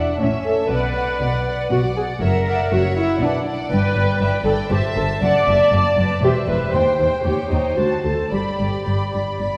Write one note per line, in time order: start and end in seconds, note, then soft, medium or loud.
0.00 0.12 E1 soft
0.00 0.12 E2 soft
0.00 0.20 D4 medium
0.00 0.20 D5 soft
0.00 0.20 E5 soft
0.00 0.20 F#5 soft
0.20 0.63 A1 medium
0.20 0.63 A2 soft
0.20 0.46 C#4 medium
0.20 0.45 C#5 soft
0.20 0.45 E5 soft
0.20 0.70 E5 soft
0.46 0.71 A4 medium
0.46 0.71 C#5 soft
0.46 0.71 E5 soft
0.71 1.13 B1 soft
0.71 1.13 B2 medium
0.71 1.69 B4 medium
0.71 0.95 D5 soft
0.71 1.71 D5 medium
0.71 0.95 F#5 soft
0.96 1.20 D5 soft
0.96 1.20 F#5 soft
1.21 1.63 B1 soft
1.21 1.63 B2 medium
1.21 1.45 D5 soft
1.21 1.45 F#5 soft
1.46 1.70 D5 soft
1.46 1.70 F#5 soft
1.72 2.14 B1 medium
1.72 2.14 B2 medium
1.72 1.80 F#4 medium
1.72 1.95 D5 soft
1.72 2.21 D5 soft
1.72 1.95 F#5 soft
1.96 2.04 G#4 medium
1.96 2.21 D5 soft
1.96 2.21 F#5 soft
2.21 2.64 F#1 medium
2.21 2.64 F#2 medium
2.21 2.71 A#4 medium
2.21 2.29 C#5 soft
2.21 2.45 E5 soft
2.21 2.45 F#5 soft
2.46 2.71 D5 soft
2.46 2.69 E5 soft
2.46 2.69 F#5 soft
2.71 3.14 F#1 medium
2.71 3.14 F#2 medium
2.71 2.80 F#4 medium
2.71 3.20 C#5 medium
2.71 2.95 E5 soft
2.71 2.95 F#5 soft
2.96 3.21 E4 medium
2.96 3.21 E5 soft
2.96 3.20 F#5 soft
3.21 3.63 B1 medium
3.21 3.63 B2 medium
3.21 3.46 D4 medium
3.21 3.30 B4 medium
3.21 3.45 D5 soft
3.21 3.45 F#5 soft
3.46 3.70 D5 soft
3.46 4.19 D5 soft
3.46 3.71 F#5 soft
3.71 3.79 G1 medium
3.71 3.79 G2 medium
3.71 4.42 B4 medium
3.71 3.95 D5 medium
3.71 3.95 G5 medium
3.96 4.04 G1 soft
3.96 4.04 G2 medium
3.96 4.20 D5 soft
3.96 4.21 G5 soft
4.21 4.29 G1 soft
4.21 4.29 G2 medium
4.21 4.45 D5 medium
4.21 4.29 E5 medium
4.21 4.45 G5 soft
4.45 4.54 G1 medium
4.45 4.53 G2 medium
4.45 4.53 A4 medium
4.45 4.70 D5 medium
4.45 4.71 D5 medium
4.45 4.71 G5 soft
4.70 4.79 G1 medium
4.70 4.79 G2 medium
4.70 4.78 G4 medium
4.70 4.96 C5 soft
4.70 5.22 E5 medium
4.70 4.96 A5 soft
4.97 5.05 G1 medium
4.97 5.05 G2 soft
4.97 5.05 A4 medium
4.97 5.22 C5 soft
4.97 5.22 A5 soft
5.22 5.31 F#1 medium
5.22 5.30 F#2 medium
5.22 5.47 D5 soft
5.22 6.21 D5 medium
5.22 5.48 F#5 medium
5.22 5.46 A5 medium
5.47 5.56 F#1 soft
5.47 5.55 F#2 soft
5.47 5.72 D5 soft
5.47 5.73 E5 medium
5.47 5.71 A5 soft
5.72 5.81 F#1 soft
5.72 5.80 F#2 medium
5.72 5.97 D5 soft
5.72 5.98 D5 medium
5.72 5.97 A5 soft
5.97 6.06 F#1 soft
5.97 6.05 F#2 soft
5.97 6.73 B4 medium
5.97 6.23 D5 soft
5.97 6.23 A5 soft
6.23 6.31 E1 medium
6.23 6.31 E2 medium
6.23 6.31 G4 medium
6.23 6.48 C5 soft
6.23 6.48 E5 soft
6.48 6.56 E1 soft
6.48 6.56 E2 soft
6.48 6.74 B4 medium
6.48 6.73 C5 soft
6.48 6.74 E5 soft
6.74 6.82 D#2 medium
6.74 7.25 C5 medium
6.74 6.98 C5 soft
6.74 8.32 C5 soft
6.74 6.99 G5 soft
6.99 7.07 D#2 soft
6.99 7.25 C5 soft
6.99 7.24 G5 soft
7.25 7.33 D#2 soft
7.25 7.34 D#2 soft
7.25 7.51 G4 medium
7.25 7.50 C#5 soft
7.25 7.50 G5 soft
7.51 7.59 D#2 soft
7.51 7.77 D#4 medium
7.51 7.77 C#5 soft
7.51 7.77 G5 soft
7.77 7.85 D2 soft
7.77 7.86 D2 soft
7.77 8.04 F#4 soft
7.77 8.05 C5 soft
7.77 8.04 A5 soft
8.05 8.13 D2 soft
8.05 8.32 A4 soft
8.05 8.32 C5 soft
8.05 8.32 A5 soft
8.32 8.40 G1 soft
8.32 8.40 G2 soft
8.32 9.40 G4 soft
8.32 8.58 D5 soft
8.32 9.57 D5 soft
8.32 8.59 B5 soft
8.59 8.68 G1 soft
8.59 8.67 G2 soft
8.59 8.86 D5 soft
8.59 8.86 B5 soft
8.87 8.95 G1 soft
8.87 8.95 G2 soft
8.87 9.12 D5 soft
8.87 9.13 B5 soft
9.13 9.21 G1 soft
9.13 9.22 G2 soft
9.13 9.39 D5 soft
9.13 9.39 B5 soft
9.40 9.48 G1 soft
9.40 9.48 G2 soft
9.40 9.57 D5 soft
9.40 9.57 B5 soft